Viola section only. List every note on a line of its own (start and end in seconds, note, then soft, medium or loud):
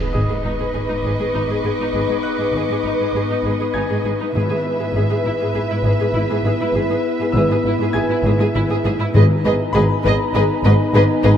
0.14 0.20 G#4 medium
0.29 0.35 G#4 soft
0.44 0.50 D#4 medium
0.59 0.65 G#4 medium
0.74 0.80 G#4 soft
0.88 0.95 D#4 soft
1.05 1.10 G#4 medium
1.19 1.25 G#4 medium
1.34 1.40 D#4 medium
1.50 1.56 G#4 medium
1.65 1.71 G#4 soft
1.80 1.86 D#4 medium
1.94 2.00 G#4 soft
2.09 2.15 G#4 soft
2.40 2.46 G#4 soft
2.56 2.61 G#4 medium
2.70 2.76 G#4 soft
2.85 2.91 D#4 soft
3.00 3.06 G#4 medium
3.16 3.21 G#4 soft
3.30 3.36 D#4 soft
3.45 3.51 G#4 medium
3.60 3.66 G#4 medium
3.74 3.80 D#4 soft
3.89 3.95 G#4 medium
4.05 4.11 G#4 soft
4.20 4.26 D#4 medium
4.35 4.41 G#4 medium
4.49 4.55 G#4 soft
4.80 4.86 G#4 soft
4.95 5.01 G#4 medium
5.10 5.16 G#4 soft
5.26 5.31 E4 soft
5.40 5.46 G#4 medium
5.55 5.61 G#4 medium
5.70 5.76 E4 medium
5.84 5.90 G#4 medium
6.00 6.06 G#4 medium
6.14 6.20 E4 medium
6.30 6.36 G#4 medium
6.45 6.51 G#4 medium
6.61 6.67 E4 medium
6.75 6.81 G#4 medium
6.91 6.96 G#4 soft
7.20 7.26 G#4 medium
7.36 7.41 G#4 medium
7.51 7.57 G#4 medium
7.66 7.72 E4 medium
7.81 7.86 G#4 medium
7.95 8.01 G#4 medium
8.10 8.16 E4 medium
8.24 8.30 G#4 medium
8.40 8.46 G#4 medium
8.55 8.61 E4 medium
8.70 8.76 G#4 medium
8.85 8.91 G#4 medium
8.99 9.05 E4 medium
9.14 9.22 G#4 medium
9.45 9.53 G#4 medium
9.74 9.82 G#4 medium
10.06 10.14 G#4 medium
10.34 10.42 G#4 medium
10.64 10.72 G#4 medium
10.94 11.02 G#4 medium
11.24 11.32 G#4 medium